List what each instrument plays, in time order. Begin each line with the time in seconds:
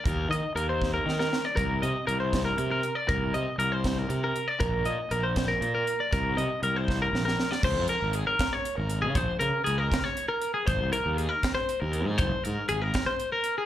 0.05 fingered electric bass D#2, clean electric guitar A#4, kick, closed hi-hat
0.29 fingered electric bass D#3, clean electric guitar D#5, closed hi-hat
0.55 fingered electric bass D#2, clean electric guitar A#4, closed hi-hat
0.69 clean electric guitar C5
0.82 kick, snare
0.94 clean electric guitar A#4
1.06 fingered electric bass D#3, snare
1.20 clean electric guitar A#4, snare
1.33 snare
1.45 clean electric guitar D5
1.56 fingered electric bass C2, clean electric guitar A#4, kick, closed hi-hat
1.82 fingered electric bass C3, clean electric guitar D#5, closed hi-hat
2.07 fingered electric bass C2, clean electric guitar A#4, closed hi-hat
2.20 clean electric guitar C5
2.33 kick, snare, closed hi-hat
2.45 clean electric guitar A#4
2.58 fingered electric bass C3, closed hi-hat
2.71 clean electric guitar A#4
2.83 closed hi-hat
2.95 clean electric guitar D5
3.09 fingered electric bass C2, clean electric guitar A#4, kick, closed hi-hat
3.34 fingered electric bass C3, clean electric guitar D#5, closed hi-hat
3.58 fingered electric bass C2, clean electric guitar A#4, closed hi-hat
3.72 clean electric guitar C5
3.84 kick, snare, closed hi-hat
3.99 clean electric guitar A#4
4.09 fingered electric bass C3, closed hi-hat
4.24 clean electric guitar A#4
4.36 closed hi-hat
4.48 clean electric guitar D5
4.60 fingered electric bass A#1, clean electric guitar A#4, kick, closed hi-hat
4.85 fingered electric bass A#2, clean electric guitar D#5, closed hi-hat
5.11 fingered electric bass A#1, clean electric guitar A#4, closed hi-hat
5.23 clean electric guitar C5
5.36 kick, snare, closed hi-hat
5.48 clean electric guitar A#4
5.61 fingered electric bass A#2, closed hi-hat
5.75 clean electric guitar A#4
5.87 closed hi-hat
6.00 clean electric guitar D5
6.13 fingered electric bass C2, clean electric guitar A#4, kick, closed hi-hat
6.36 fingered electric bass C3, clean electric guitar D#5, closed hi-hat
6.63 fingered electric bass C2, clean electric guitar A#4, closed hi-hat
6.76 clean electric guitar C5
6.88 kick, snare
7.02 clean electric guitar A#4
7.13 fingered electric bass A#1, snare
7.25 clean electric guitar A#4, snare
7.40 snare
7.51 clean electric guitar D5, snare
7.63 fingered electric bass C#2, clean electric guitar C5, kick, crash
7.76 fingered electric bass F2
7.88 clean electric guitar A#4, closed hi-hat
8.02 fingered electric bass G#1
8.13 clean electric guitar G#4, closed hi-hat
8.27 clean electric guitar A#4
8.39 kick, snare, closed hi-hat
8.53 clean electric guitar C#5
8.65 closed hi-hat
8.76 fingered electric bass G#1, clean electric guitar A#4
8.90 closed hi-hat
9.02 fingered electric bass C#3, clean electric guitar G#4
9.15 fingered electric bass A#1, clean electric guitar C5, kick, closed hi-hat
9.40 fingered electric bass C#3, clean electric guitar A#4, closed hi-hat
9.64 fingered electric bass C#2, clean electric guitar G#4, closed hi-hat
9.78 clean electric guitar A#4
9.92 kick, snare, closed hi-hat
10.04 clean electric guitar C#5
10.17 closed hi-hat
10.29 clean electric guitar A#4
10.42 closed hi-hat
10.54 clean electric guitar G#4
10.67 fingered electric bass G#1, clean electric guitar C5, kick, closed hi-hat
10.81 fingered electric bass C2
10.93 clean electric guitar A#4, closed hi-hat
11.06 fingered electric bass D#2
11.18 clean electric guitar G#4, closed hi-hat
11.29 clean electric guitar A#4
11.43 kick, snare, closed hi-hat
11.55 clean electric guitar C5
11.69 closed hi-hat
11.80 fingered electric bass D#2, clean electric guitar A#4
11.93 closed hi-hat
12.06 fingered electric bass G#2, clean electric guitar G#4
12.18 fingered electric bass F#1, clean electric guitar C5, kick, closed hi-hat
12.44 fingered electric bass G#2, clean electric guitar A#4, closed hi-hat
12.69 fingered electric bass G#1, clean electric guitar G#4, closed hi-hat
12.82 clean electric guitar A#4
12.94 kick, snare, closed hi-hat
13.06 clean electric guitar C5
13.20 closed hi-hat
13.32 clean electric guitar A#4
13.44 closed hi-hat
13.58 clean electric guitar G#4